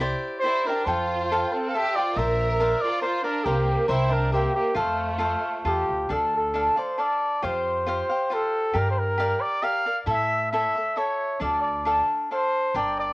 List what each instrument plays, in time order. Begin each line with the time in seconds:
Already playing: upright bass C2
0.00 cavaquinho E4 G4 C5 D5
0.40 violin section E4, cavaquinho E4, trumpet C5
0.45 cavaquinho G4 C5 D5
0.67 violin section D4, cavaquinho G4 C5 D5, trumpet A#4
0.85 upright bass F2, violin section F4, cavaquinho A4 C5 F5 G5, trumpet C5
1.32 cavaquinho A4 C5 F5 G5
1.52 violin section C4, trumpet A4
1.68 violin section A4, trumpet F5
1.74 violin section G4, cavaquinho A4 C5 F5 G5, trumpet E5
1.96 violin section F4, cavaquinho C5 F5 G5, trumpet D5
2.16 upright bass A#1, violin section A#4, cavaquinho A#4 C5 D5, trumpet E5
2.60 cavaquinho A#4 C5 D5 F5
2.81 violin section F4, trumpet D5
3.01 violin section F4, cavaquinho A#4 C5 D5 F5, trumpet C5
3.24 violin section D4, trumpet A#4, cavaquinho C5 D5 F5
3.44 upright bass C2, violin section A#3, trumpet G4, cavaquinho A#4 C5 F5 G5
3.88 upright bass C2, violin section E4, cavaquinho A#4 C5 E5 G5, trumpet C5
4.11 violin section D4, trumpet A#4
4.32 violin section A#3, trumpet G4, cavaquinho A#4 C5 E5 G5
4.55 violin section A#3, trumpet G4
4.75 upright bass F2, violin section A3, cavaquinho F4 A4 C5 F5, trumpet F4
5.18 cavaquinho F4 A4 C5 F5
5.65 upright bass E2, cavaquinho F4 A4 C5 F5, trumpet G4
5.89 upright bass D2
6.09 upright bass D2, cavaquinho D4 A4 D5 F5, trumpet A4
6.36 trumpet A4
6.54 cavaquinho D4 A4 D5 F5
6.76 cavaquinho A4 D5 F5, trumpet C5
6.98 cavaquinho D4 A4 D5 F5, trumpet D5
7.42 upright bass F2, cavaquinho F4 G4 C5 F5, trumpet C5
7.86 cavaquinho F4 G4 C5 F5, trumpet C5
8.09 cavaquinho G4 C5 F5
8.30 cavaquinho F4 G4 C5 F5, trumpet A4
8.74 upright bass G2, cavaquinho G4 A#4 D5 F5
8.78 trumpet A#4
8.91 trumpet C5
8.98 trumpet A#4
9.18 cavaquinho G4 A#4 D5 F5
9.41 trumpet D5
9.63 cavaquinho G4 A#4 D5 F5, trumpet F5
9.86 cavaquinho A#4 D5 F5
10.06 upright bass A2, cavaquinho E4 A4 C#5 E5
10.11 trumpet E5
10.52 cavaquinho E4 A4 C#5 E5, trumpet E5
10.75 cavaquinho A4 C#5 E5
10.96 cavaquinho E4 A4 C#5 E5, trumpet C#5
11.40 upright bass D2, cavaquinho D4 A4 D5 F5, trumpet D5
11.62 trumpet D5
11.85 cavaquinho D4 A4 D5 F5
12.31 cavaquinho D4 A4 D5 F5, trumpet C5
12.74 upright bass G1, cavaquinho D4 A#4 D5 G5, trumpet D5
12.99 trumpet D5